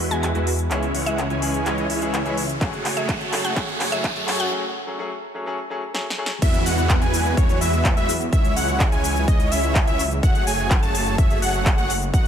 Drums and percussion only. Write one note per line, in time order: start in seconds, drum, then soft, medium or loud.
0.11 closed hi-hat medium
0.23 clap medium
0.23 closed hi-hat medium
0.35 closed hi-hat soft
0.47 open hi-hat loud
0.59 closed hi-hat medium
0.71 clap medium
0.71 closed hi-hat medium
0.83 closed hi-hat soft
0.95 open hi-hat loud
1.06 closed hi-hat medium
1.18 clap medium
1.18 closed hi-hat soft
1.30 closed hi-hat soft
1.42 open hi-hat loud
1.54 closed hi-hat medium
1.66 clap medium
1.66 closed hi-hat medium
1.78 closed hi-hat soft
1.90 open hi-hat loud
2.02 closed hi-hat medium
2.14 clap medium
2.14 closed hi-hat medium
2.26 closed hi-hat soft
2.37 open hi-hat loud
2.49 closed hi-hat medium
2.61 kick loud
2.61 clap medium
2.61 closed hi-hat medium
2.73 closed hi-hat soft
2.85 clap medium
2.85 open hi-hat loud
2.97 closed hi-hat medium
3.09 kick loud
3.09 clap medium
3.09 closed hi-hat medium
3.21 closed hi-hat soft
3.33 clap medium
3.33 open hi-hat loud
3.45 closed hi-hat soft
3.56 kick loud
3.56 clap medium
3.56 closed hi-hat medium
3.68 closed hi-hat soft
3.80 clap medium
3.80 open hi-hat loud
3.92 closed hi-hat medium
4.04 kick loud
4.04 clap medium
4.04 closed hi-hat medium
4.16 closed hi-hat soft
4.28 clap medium
4.28 open hi-hat loud
4.40 closed hi-hat medium
5.95 snare medium
6.10 snare medium
6.26 snare loud
6.42 kick loud
6.42 closed hi-hat medium
6.42 crash loud
6.42 shaker soft
6.54 closed hi-hat soft
6.54 shaker soft
6.66 open hi-hat loud
6.66 shaker medium
6.78 closed hi-hat soft
6.78 shaker soft
6.90 kick loud
6.90 clap loud
6.90 closed hi-hat medium
6.90 shaker soft
7.02 closed hi-hat soft
7.02 shaker soft
7.14 open hi-hat loud
7.14 shaker medium
7.26 closed hi-hat soft
7.26 shaker soft
7.37 kick loud
7.37 closed hi-hat medium
7.37 shaker soft
7.49 closed hi-hat soft
7.49 shaker soft
7.61 open hi-hat loud
7.61 shaker medium
7.73 closed hi-hat soft
7.73 shaker soft
7.85 kick loud
7.85 clap loud
7.85 closed hi-hat medium
7.85 shaker soft
7.97 closed hi-hat soft
7.97 shaker soft
8.09 open hi-hat loud
8.09 shaker medium
8.21 closed hi-hat soft
8.21 shaker soft
8.33 kick loud
8.33 closed hi-hat medium
8.33 shaker soft
8.45 closed hi-hat soft
8.45 shaker soft
8.56 open hi-hat loud
8.56 shaker medium
8.68 closed hi-hat soft
8.68 shaker soft
8.80 kick loud
8.80 clap loud
8.80 closed hi-hat medium
8.80 shaker soft
8.92 closed hi-hat soft
8.92 shaker soft
9.04 open hi-hat loud
9.04 shaker medium
9.17 shaker soft
9.28 kick loud
9.28 closed hi-hat medium
9.28 shaker soft
9.40 closed hi-hat soft
9.40 shaker soft
9.52 open hi-hat loud
9.52 shaker medium
9.64 closed hi-hat soft
9.64 shaker soft
9.75 kick loud
9.75 clap loud
9.75 closed hi-hat medium
9.75 shaker soft
9.87 closed hi-hat soft
9.87 shaker soft
9.99 open hi-hat loud
9.99 shaker medium
10.11 closed hi-hat soft
10.11 shaker soft
10.23 kick loud
10.23 closed hi-hat medium
10.23 shaker soft
10.35 closed hi-hat soft
10.35 shaker soft
10.47 open hi-hat loud
10.47 shaker medium
10.59 closed hi-hat soft
10.59 shaker soft
10.71 kick loud
10.71 clap loud
10.71 closed hi-hat medium
10.71 shaker soft
10.83 closed hi-hat soft
10.83 shaker soft
10.95 open hi-hat loud
10.95 shaker medium
11.07 shaker soft
11.18 kick loud
11.18 closed hi-hat medium
11.18 shaker soft
11.30 closed hi-hat soft
11.30 shaker soft
11.42 open hi-hat loud
11.42 shaker medium
11.54 closed hi-hat soft
11.54 shaker soft
11.66 kick loud
11.66 clap loud
11.66 closed hi-hat medium
11.66 shaker soft
11.78 closed hi-hat soft
11.78 shaker soft
11.90 open hi-hat loud
11.90 shaker medium
12.02 closed hi-hat soft
12.02 shaker soft
12.14 kick loud
12.14 closed hi-hat medium
12.14 shaker soft